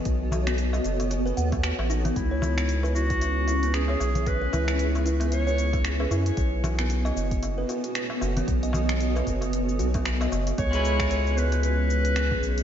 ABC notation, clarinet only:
X:1
M:4/4
L:1/8
Q:"Swing 16ths" 1/4=114
K:C#m
V:1 name="Clarinet"
z8 | E3 F3 G2 | B3 z c3 z | z8 |
z8 | c3 B B4 |]